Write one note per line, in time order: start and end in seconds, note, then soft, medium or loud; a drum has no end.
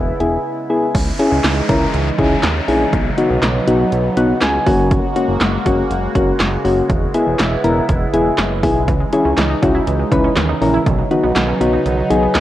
0.00 0.13 E1 loud
0.00 0.91 C#3 medium
0.00 0.91 G#3 medium
0.00 0.93 B3 medium
0.00 0.93 E4 medium
0.20 0.38 E1 loud
0.20 0.37 B3 medium
0.20 0.37 E4 medium
0.20 0.37 G#4 medium
0.20 closed hi-hat medium
0.70 0.86 B3 medium
0.70 0.86 E4 medium
0.70 0.86 G#4 medium
0.95 1.12 C#2 loud
0.95 4.63 C#3 medium
0.95 2.91 E3 medium
0.95 2.91 G#3 medium
0.95 4.63 D#4 medium
0.95 kick loud
0.95 closed hi-hat medium
0.95 crash loud
0.95 downlifter medium
1.19 1.36 C#4 medium
1.19 1.36 E4 medium
1.19 1.36 G#4 loud
1.19 closed hi-hat medium
1.32 1.40 C#2 loud
1.44 1.62 C#2 loud
1.44 snare loud
1.44 clap loud
1.44 closed hi-hat medium
1.69 1.86 C#2 loud
1.69 1.86 C#4 medium
1.69 1.86 E4 medium
1.69 1.86 A#4 loud
1.69 kick medium
1.69 closed hi-hat medium
1.94 2.11 C#2 loud
1.94 closed hi-hat medium
2.18 2.36 C#2 loud
2.18 2.35 C#4 medium
2.18 2.35 E4 medium
2.18 2.35 G#4 medium
2.18 kick loud
2.18 closed hi-hat medium
2.43 2.61 D#2 loud
2.43 snare loud
2.43 clap loud
2.43 closed hi-hat medium
2.68 2.85 A#1 loud
2.68 2.85 C#4 medium
2.68 2.85 E4 medium
2.68 2.85 G#4 loud
2.68 open hi-hat medium
2.93 3.10 B1 loud
2.93 4.65 F#3 medium
2.93 4.65 B3 medium
2.93 kick loud
2.93 closed hi-hat medium
3.18 3.34 B3 medium
3.18 3.34 D#4 medium
3.18 3.34 F#4 loud
3.18 closed hi-hat medium
3.30 3.39 B1 loud
3.42 3.60 B1 loud
3.42 snare loud
3.42 clap medium
3.42 closed hi-hat medium
3.67 3.85 B1 medium
3.67 3.84 B3 medium
3.67 3.84 D#4 medium
3.67 3.84 F#4 loud
3.67 closed hi-hat medium
3.92 4.09 B1 loud
3.92 closed hi-hat medium
4.17 4.34 B1 loud
4.17 4.33 B3 medium
4.17 4.33 D#4 medium
4.17 4.33 F#4 loud
4.17 4.40 F#5 medium
4.17 closed hi-hat medium
4.41 4.59 C#2 loud
4.41 4.88 G#5 medium
4.41 snare loud
4.41 clap loud
4.41 closed hi-hat medium
4.66 5.01 F#1 loud
4.66 8.84 C#3 medium
4.66 10.82 G#3 medium
4.66 5.06 A#3 medium
4.66 6.87 A#3 medium
4.66 5.06 C#4 medium
4.66 5.06 F#4 loud
4.66 6.88 F#4 medium
4.66 kick loud
4.66 open hi-hat medium
4.91 kick loud
4.91 closed hi-hat medium
5.16 5.33 A#3 medium
5.16 5.33 C#4 medium
5.16 5.33 F#4 loud
5.16 closed hi-hat medium
5.28 5.37 F#1 loud
5.41 5.58 F#1 loud
5.41 snare loud
5.41 clap loud
5.41 closed hi-hat medium
5.66 5.83 F#1 medium
5.66 5.82 A#3 medium
5.66 5.82 C#4 medium
5.66 5.82 F#4 loud
5.66 kick medium
5.66 closed hi-hat medium
5.90 6.08 F#1 loud
5.90 closed hi-hat medium
6.15 6.32 F#1 loud
6.15 6.32 A#3 medium
6.15 6.32 C#4 medium
6.15 6.32 F#4 loud
6.15 kick loud
6.15 closed hi-hat medium
6.40 6.57 F#1 loud
6.40 snare loud
6.40 clap loud
6.40 closed hi-hat medium
6.65 6.82 F#1 loud
6.65 6.81 A#3 medium
6.65 6.81 C#4 medium
6.65 6.81 F#4 medium
6.65 open hi-hat medium
6.90 7.07 E1 loud
6.90 8.86 B3 medium
6.90 8.86 E4 medium
6.90 kick loud
6.90 closed hi-hat medium
7.14 7.31 B3 medium
7.14 7.31 E4 medium
7.14 7.31 G#4 loud
7.14 closed hi-hat medium
7.27 7.36 E1 loud
7.39 7.57 E1 loud
7.39 snare loud
7.39 clap loud
7.39 closed hi-hat medium
7.64 7.81 E1 loud
7.64 7.81 B3 medium
7.64 7.81 E4 medium
7.64 7.81 A#4 loud
7.64 closed hi-hat medium
7.89 8.06 E1 loud
7.89 kick loud
7.89 closed hi-hat medium
8.14 8.31 E1 loud
8.14 8.30 B3 medium
8.14 8.30 E4 medium
8.14 8.30 G#4 loud
8.14 closed hi-hat medium
8.38 8.65 F#1 medium
8.38 snare loud
8.38 clap loud
8.38 closed hi-hat medium
8.63 8.90 B1 loud
8.63 8.80 B3 medium
8.63 8.80 E4 medium
8.63 8.80 G#4 medium
8.63 kick loud
8.63 open hi-hat medium
8.88 9.05 C#2 loud
8.88 12.40 C#3 medium
8.88 10.84 E3 medium
8.88 8.98 E3 loud
8.88 10.84 D#4 medium
8.88 kick loud
8.88 closed hi-hat medium
9.00 9.10 G#3 medium
9.13 9.23 E3 medium
9.13 9.29 C#4 medium
9.13 9.29 E4 medium
9.13 9.29 G#4 loud
9.13 closed hi-hat medium
9.25 9.34 C#2 loud
9.25 9.35 C#4 medium
9.38 9.55 C#2 loud
9.38 9.47 E3 medium
9.38 snare loud
9.38 clap loud
9.38 closed hi-hat medium
9.50 9.60 D#4 medium
9.62 9.80 C#2 loud
9.62 9.72 E3 medium
9.62 9.79 C#4 medium
9.62 9.79 E4 medium
9.62 9.79 F#4 loud
9.62 kick loud
9.62 closed hi-hat medium
9.75 9.84 E4 medium
9.87 10.04 C#2 loud
9.87 9.97 E3 medium
9.87 closed hi-hat medium
10.00 10.09 G#3 medium
10.12 10.29 C#2 loud
10.12 10.22 E3 medium
10.12 10.28 C#4 medium
10.12 10.28 E4 medium
10.12 10.28 B4 loud
10.12 kick loud
10.12 closed hi-hat medium
10.24 10.34 C#4 medium
10.37 10.54 D#2 loud
10.37 10.46 E3 medium
10.37 snare loud
10.37 clap loud
10.37 closed hi-hat medium
10.49 10.59 D#4 medium
10.61 10.79 A#1 medium
10.61 10.71 E3 medium
10.61 10.78 C#4 medium
10.61 10.78 E4 medium
10.61 10.78 A#4 medium
10.61 open hi-hat medium
10.74 10.84 E4 medium
10.86 11.04 B1 loud
10.86 10.96 D#3 loud
10.86 12.40 F#3 medium
10.86 12.40 B3 medium
10.86 12.40 D#4 medium
10.86 kick loud
10.86 closed hi-hat medium
10.99 11.08 F#3 medium
11.11 11.21 D#3 medium
11.11 11.28 B3 medium
11.11 11.28 D#4 medium
11.11 11.28 F#4 loud
11.11 closed hi-hat medium
11.23 11.32 B1 loud
11.23 11.33 B3 medium
11.36 11.53 B1 loud
11.36 11.46 D#3 medium
11.36 snare loud
11.36 clap loud
11.36 closed hi-hat medium
11.48 11.58 C#4 medium
11.61 11.78 B1 medium
11.61 11.71 D#3 medium
11.61 11.77 B3 medium
11.61 11.77 D#4 medium
11.61 11.77 F#4 medium
11.61 closed hi-hat medium
11.73 11.83 D#4 medium
11.85 12.03 B1 loud
11.85 11.95 D#3 medium
11.85 closed hi-hat medium
11.98 12.08 F#3 medium
12.10 12.28 B1 loud
12.10 12.20 D#3 medium
12.10 12.27 B3 medium
12.10 12.27 D#4 medium
12.10 12.27 G#4 loud
12.10 closed hi-hat medium
12.23 12.32 B3 medium
12.35 12.40 C#2 loud
12.35 12.40 D#3 medium
12.35 snare loud
12.35 clap loud
12.35 closed hi-hat medium